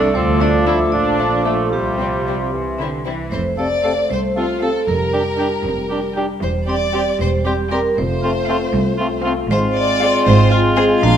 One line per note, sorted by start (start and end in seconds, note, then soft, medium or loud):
0.00 0.16 A3 medium
0.00 0.13 D4 medium
0.00 0.12 A4 medium
0.00 1.68 A4 medium
0.00 0.13 D5 medium
0.14 0.79 D2 medium
0.14 2.52 F3 medium
0.14 0.22 C4 soft
0.14 0.43 C4 medium
0.14 0.91 F4 medium
0.14 0.39 C5 medium
0.14 1.68 D6 medium
0.39 0.49 A3 soft
0.39 0.47 D4 medium
0.39 0.48 D4 soft
0.39 0.66 D4 medium
0.39 0.65 D5 medium
0.66 0.75 A3 soft
0.66 0.75 D4 soft
0.66 0.74 E4 medium
0.66 0.79 E4 medium
0.66 0.91 E5 medium
0.92 1.59 A#1 medium
0.92 1.58 A#2 soft
0.92 1.44 D4 medium
0.92 1.72 D4 medium
0.92 1.44 D4 medium
0.92 1.41 D5 medium
1.19 1.27 A3 soft
1.19 1.27 D4 soft
1.45 1.70 A3 soft
1.45 1.53 A3 soft
1.45 1.72 A3 soft
1.45 1.54 D4 soft
1.45 1.70 A4 soft
1.71 2.40 C2 soft
1.71 2.39 C3 soft
1.71 2.50 G3 soft
1.71 2.51 G3 soft
1.71 2.91 C4 soft
1.71 3.03 G4 soft
1.71 2.49 G4 soft
1.71 3.04 C6 soft
1.99 2.09 G3 soft
1.99 2.07 C4 soft
1.99 2.09 C4 soft
2.27 2.36 G3 soft
2.27 2.35 C4 soft
2.27 2.36 C4 soft
2.52 3.19 C2 soft
2.52 2.77 C3 soft
2.52 3.05 E3 soft
2.79 3.06 D3 soft
2.79 2.89 G3 soft
2.79 2.89 C4 soft
2.79 2.87 E4 soft
3.05 3.32 E3 soft
3.05 3.13 G3 soft
3.05 3.14 C4 soft
3.05 3.13 E4 soft
3.32 3.95 F1 medium
3.32 3.95 F2 medium
3.32 4.83 A3 soft
3.32 3.40 C5 soft
3.32 3.56 C5 medium
3.32 4.84 C5 soft
3.57 3.68 C3 soft
3.57 3.68 C4 soft
3.57 3.67 A4 soft
3.57 4.09 D5 medium
3.57 4.07 D5 medium
3.57 3.63 F5 soft
3.84 3.94 C3 soft
3.84 4.04 A3 soft
3.84 3.94 C4 soft
3.84 3.93 A4 soft
3.84 4.04 A4 soft
3.84 3.90 F5 soft
3.84 4.03 F5 soft
4.10 4.72 C2 medium
4.10 4.34 C5 medium
4.10 4.19 C5 soft
4.35 4.45 C3 soft
4.35 4.46 C4 soft
4.35 4.62 F4 medium
4.35 4.61 F4 medium
4.35 4.46 A4 soft
4.35 4.41 F5 soft
4.62 4.71 C3 soft
4.62 4.81 A3 soft
4.62 4.71 C4 soft
4.62 4.81 A4 soft
4.62 4.71 A4 soft
4.62 4.88 A4 soft
4.62 4.86 A4 medium
4.62 4.81 F5 soft
4.62 4.69 F5 soft
4.87 5.50 F1 medium
4.87 5.50 F2 medium
4.87 7.94 G3 soft
4.87 7.94 G4 soft
4.87 6.14 A#4 medium
4.87 6.15 A#4 soft
5.13 5.23 G3 soft
5.13 5.23 D4 soft
5.13 5.22 G4 soft
5.13 5.20 G5 soft
5.38 5.49 G3 soft
5.38 5.48 D4 soft
5.38 5.59 D4 soft
5.38 5.48 G4 soft
5.38 5.59 G4 soft
5.38 5.59 G5 soft
5.38 5.46 G5 soft
5.65 6.27 F1 medium
5.65 6.27 F2 medium
5.89 6.00 G3 soft
5.89 6.01 D4 soft
5.89 5.99 G4 soft
5.89 5.98 G5 soft
6.16 6.26 G3 soft
6.16 6.36 D4 soft
6.16 6.26 D4 soft
6.16 6.26 G4 soft
6.16 6.36 G4 soft
6.16 6.36 G5 soft
6.16 6.24 G5 soft
6.42 7.04 E1 medium
6.42 7.04 E2 medium
6.42 6.50 C5 soft
6.42 6.67 C5 medium
6.66 6.78 G3 soft
6.66 6.77 C4 soft
6.66 6.76 G4 soft
6.66 7.18 D5 medium
6.66 7.17 D5 medium
6.66 6.74 C6 soft
6.93 7.03 G3 soft
6.93 7.03 C4 soft
6.93 7.13 C4 soft
6.93 7.02 G4 soft
6.93 7.13 G4 soft
6.93 7.13 G5 medium
6.93 7.00 C6 soft
7.20 7.82 E1 medium
7.20 7.81 E2 medium
7.20 7.28 C5 medium
7.20 7.44 C5 medium
7.44 7.55 G3 soft
7.44 7.55 C4 soft
7.44 7.54 G4 soft
7.44 7.53 G4 medium
7.44 7.70 G4 medium
7.44 7.52 C6 soft
7.70 7.81 G3 soft
7.70 7.80 C4 soft
7.70 7.91 C4 medium
7.70 7.80 G4 soft
7.70 7.91 G4 medium
7.70 7.95 A#4 medium
7.70 7.80 A#4 medium
7.70 7.90 G5 medium
7.70 7.78 C6 soft
7.97 8.59 F1 medium
7.97 8.59 F2 medium
7.97 9.51 A3 medium
7.97 9.50 F4 soft
7.97 9.23 C5 medium
7.97 9.22 C5 medium
8.22 8.33 A3 soft
8.22 8.32 C4 soft
8.22 8.32 F4 soft
8.22 8.30 C6 soft
8.48 8.58 A3 soft
8.48 8.57 C4 medium
8.48 8.68 C4 medium
8.48 8.57 F4 medium
8.48 8.68 A4 medium
8.48 8.67 F5 medium
8.48 8.57 C6 medium
8.74 9.35 C2 medium
8.97 9.09 A3 medium
8.97 9.09 C4 soft
8.97 9.07 F4 medium
8.97 9.06 C6 medium
9.24 9.35 A3 medium
9.24 9.44 C4 medium
9.24 9.35 C4 medium
9.24 9.33 F4 medium
9.24 9.44 A4 medium
9.24 9.44 F5 medium
9.24 9.32 C6 medium
9.50 10.11 G#1 medium
9.50 10.11 G#2 medium
9.50 11.17 G#3 medium
9.50 11.04 C4 medium
9.50 11.17 F4 medium
9.50 10.99 F4 medium
9.50 9.59 C5 medium
9.50 9.75 C5 medium
9.50 10.99 C6 medium
9.74 10.25 D5 medium
9.74 10.24 D5 medium
10.01 10.20 C4 medium
10.01 10.20 G#4 medium
10.01 10.20 F5 medium
10.26 10.87 G#1 medium
10.26 10.87 G#2 medium
10.26 10.50 C5 medium
10.26 10.51 C5 medium
10.51 10.59 F4 medium
10.51 10.75 F4 medium
10.76 10.97 C4 medium
10.76 10.84 G#4 medium
10.76 10.96 G#4 medium
10.76 11.01 G#4 loud
10.76 10.97 F5 medium
11.02 11.17 A#1 medium
11.02 11.17 A#2 medium
11.02 11.17 D4 medium
11.02 11.17 F5 medium
11.02 11.17 A#5 medium